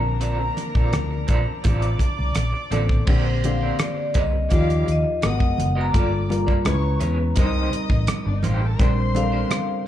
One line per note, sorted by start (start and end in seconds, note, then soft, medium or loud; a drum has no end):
0.00 0.48 A#1 medium
0.00 1.00 D3 medium
0.00 3.04 F3 medium
0.00 1.00 A#3 medium
0.00 3.04 A#3 medium
0.00 1.01 C4 medium
0.00 3.04 D4 medium
0.00 1.01 A#4 medium
0.00 1.61 A#4 medium
0.00 1.61 A#5 medium
0.00 2.33 A#5 medium
0.00 muted clean electric guitar stroke soft
0.20 0.42 C4 medium
0.20 0.39 F4 medium
0.20 0.38 A4 medium
0.20 0.37 D5 medium
0.20 closed hi-hat medium
0.39 muted clean electric guitar stroke soft
0.57 muted clean electric guitar stroke soft
0.57 closed hi-hat medium
0.57 muted conga soft
0.75 0.91 A#1 medium
0.75 0.91 C4 soft
0.75 0.91 F4 soft
0.75 0.91 A4 medium
0.75 0.91 D5 soft
0.75 kick medium
0.92 1.24 D2 medium
0.92 muted clean electric guitar stroke soft
0.92 cross-stick loud
0.92 closed hi-hat medium
0.92 high conga medium
1.11 muted clean electric guitar stroke soft
1.27 1.45 A#1 medium
1.27 1.48 C4 medium
1.27 1.46 F4 medium
1.27 1.46 A4 medium
1.27 1.45 D5 medium
1.27 kick medium
1.27 closed hi-hat medium
1.47 muted clean electric guitar stroke soft
1.64 1.96 A1 medium
1.64 1.97 C4 medium
1.64 1.98 F4 medium
1.64 1.98 A4 medium
1.64 3.05 D5 medium
1.64 1.98 D5 medium
1.64 3.04 D6 medium
1.64 kick medium
1.64 cross-stick soft
1.64 closed hi-hat medium
1.64 muted conga soft
1.64 low conga medium
1.82 closed hi-hat soft
1.99 muted fingered electric bass stroke soft
1.99 muted clean electric guitar stroke soft
1.99 kick medium
1.99 closed hi-hat medium
1.99 muted conga soft
2.17 2.34 C2 medium
2.17 muted clean electric guitar stroke soft
2.35 2.51 A#1 medium
2.35 muted clean electric guitar stroke soft
2.35 cross-stick medium
2.35 closed hi-hat medium
2.35 high conga medium
2.53 muted clean electric guitar stroke soft
2.71 3.03 A1 medium
2.71 2.94 D3 medium
2.71 2.95 A#3 medium
2.71 2.92 C4 medium
2.71 2.95 C4 medium
2.71 2.90 F4 medium
2.71 2.89 A4 medium
2.71 2.95 A4 medium
2.71 2.88 D5 medium
2.71 closed hi-hat medium
2.71 high conga medium
2.89 muted clean electric guitar stroke soft
2.89 kick medium
3.07 3.70 A#1 medium
3.07 3.31 D3 medium
3.07 3.31 A#3 medium
3.07 3.28 C4 medium
3.07 3.31 C4 medium
3.07 3.25 G4 medium
3.07 3.31 G4 medium
3.07 3.24 A#4 medium
3.07 4.13 C5 medium
3.07 3.23 D5 medium
3.07 4.13 C6 medium
3.07 kick loud
3.07 crash medium
3.25 muted clean electric guitar stroke soft
3.44 4.34 D3 medium
3.44 4.34 A#3 medium
3.44 4.35 C4 medium
3.44 4.34 G4 medium
3.44 3.78 F5 medium
3.44 muted clean electric guitar stroke soft
3.44 closed hi-hat medium
3.44 muted conga soft
3.61 3.78 C4 soft
3.61 3.78 G4 soft
3.61 3.78 A#4 soft
3.61 3.77 D5 soft
3.79 4.14 D5 medium
3.79 cross-stick loud
3.79 closed hi-hat medium
3.79 high conga medium
3.97 muted clean electric guitar stroke soft
4.14 4.46 C2 medium
4.14 4.35 C4 medium
4.14 4.32 G4 medium
4.14 4.32 A#4 medium
4.14 4.31 D5 medium
4.14 kick medium
4.14 closed hi-hat medium
4.19 4.90 D#5 medium
4.32 muted clean electric guitar stroke soft
4.49 4.83 D#2 medium
4.49 5.08 F3 medium
4.49 4.83 A#3 medium
4.49 5.08 D#4 medium
4.49 4.83 F4 medium
4.49 5.08 F4 medium
4.49 4.83 G4 medium
4.49 5.09 G4 medium
4.49 4.83 D5 medium
4.49 4.86 F5 medium
4.49 4.86 D6 medium
4.49 kick medium
4.49 cross-stick soft
4.49 closed hi-hat medium
4.49 muted conga soft
4.70 closed hi-hat soft
4.86 5.03 D#2 medium
4.86 muted clean electric guitar stroke soft
4.86 closed hi-hat medium
4.92 5.26 D#5 medium
5.03 muted clean electric guitar stroke soft
5.21 5.40 G#1 medium
5.21 5.80 G#3 medium
5.21 5.80 B3 medium
5.21 5.80 F#4 medium
5.21 5.81 A#4 medium
5.21 5.57 D#5 medium
5.21 5.57 D#6 medium
5.21 muted clean electric guitar stroke soft
5.21 cross-stick loud
5.21 closed hi-hat medium
5.21 high conga medium
5.27 5.80 F#5 medium
5.39 5.56 F#1 medium
5.39 muted clean electric guitar stroke soft
5.39 kick medium
5.58 5.90 F#1 medium
5.58 closed hi-hat medium
5.58 high conga medium
5.75 5.92 B3 medium
5.75 5.93 F#4 medium
5.75 5.93 A#4 medium
5.75 5.94 D#5 medium
5.81 7.89 A#5 medium
5.92 6.57 G1 medium
5.92 6.17 G3 medium
5.92 6.14 A#3 medium
5.92 6.17 A#3 medium
5.92 6.12 F4 medium
5.92 6.17 F4 medium
5.92 6.11 A4 medium
5.92 6.17 A4 medium
5.92 6.28 D5 medium
5.92 6.11 D5 medium
5.92 6.28 D6 medium
5.92 kick loud
5.92 closed hi-hat medium
6.12 muted clean electric guitar stroke soft
6.29 6.66 G3 medium
6.29 6.66 A#3 medium
6.29 6.66 F4 medium
6.29 6.66 A#4 medium
6.29 muted clean electric guitar stroke soft
6.29 closed hi-hat medium
6.29 muted conga soft
6.47 6.64 A#3 soft
6.47 6.64 F4 soft
6.47 6.63 A4 soft
6.47 6.63 D5 medium
6.47 kick medium
6.65 6.97 C#2 medium
6.65 7.23 G#3 medium
6.65 7.23 C#4 medium
6.65 7.23 E4 medium
6.65 7.23 B4 medium
6.65 7.00 C#5 medium
6.65 7.00 C#6 medium
6.65 muted clean electric guitar stroke soft
6.65 cross-stick loud
6.65 closed hi-hat medium
6.65 high conga medium
6.82 muted clean electric guitar stroke soft
7.00 7.32 E2 medium
7.00 7.21 B3 medium
7.00 7.18 E4 medium
7.00 7.17 G#4 medium
7.00 7.16 C#5 medium
7.00 closed hi-hat medium
7.17 muted clean electric guitar stroke soft
7.36 7.68 C2 loud
7.36 8.51 G3 medium
7.36 7.69 A#3 medium
7.36 8.52 C4 medium
7.36 7.44 D4 medium
7.36 7.69 D#4 medium
7.36 7.70 G4 medium
7.36 8.52 A#4 medium
7.36 7.70 C5 medium
7.36 8.17 D#5 medium
7.36 8.17 D#6 loud
7.36 kick loud
7.36 cross-stick soft
7.36 closed hi-hat medium
7.36 muted conga soft
7.45 8.55 D#4 medium
7.73 muted fingered electric bass stroke soft
7.73 closed hi-hat medium
7.90 8.06 A1 medium
7.90 muted clean electric guitar stroke soft
7.90 kick medium
8.07 muted clean electric guitar stroke soft
8.07 cross-stick loud
8.07 closed hi-hat loud
8.07 high conga medium
8.25 8.42 G1 medium
8.25 8.35 D4 medium
8.25 8.35 D5 medium
8.25 muted clean electric guitar stroke soft
8.36 8.45 D#4 medium
8.36 8.44 D#5 medium
8.43 8.75 A1 medium
8.43 8.64 A#3 medium
8.43 8.61 D#4 medium
8.43 8.53 F4 medium
8.43 8.60 G4 medium
8.43 8.60 C5 medium
8.43 8.53 F5 medium
8.43 closed hi-hat medium
8.43 high conga medium
8.54 8.62 G4 medium
8.54 8.62 G5 medium
8.61 8.71 A4 medium
8.61 8.71 A5 medium
8.61 muted clean electric guitar stroke soft
8.73 8.81 A#4 medium
8.73 8.81 A#5 medium
8.79 9.42 A#1 medium
8.79 9.02 G3 medium
8.79 9.00 A#3 medium
8.79 9.03 C4 medium
8.79 8.97 D4 medium
8.79 9.03 D4 medium
8.79 8.96 G4 medium
8.79 9.03 A#4 medium
8.79 8.96 C5 medium
8.79 9.85 C5 medium
8.79 9.85 C6 loud
8.79 kick loud
8.79 closed hi-hat medium
8.97 muted clean electric guitar stroke soft
9.15 9.87 G3 medium
9.15 9.87 C4 medium
9.15 9.87 D4 medium
9.15 9.22 A4 medium
9.15 9.87 F5 medium
9.15 muted clean electric guitar stroke soft
9.15 closed hi-hat medium
9.15 muted conga soft
9.23 9.87 A#4 medium
9.32 9.49 A#3 soft
9.32 9.50 D4 soft
9.32 9.49 G4 soft
9.32 9.49 C5 medium
9.50 muted clean electric guitar stroke soft
9.50 cross-stick loud
9.50 closed hi-hat medium
9.50 high conga medium
9.68 muted clean electric guitar stroke soft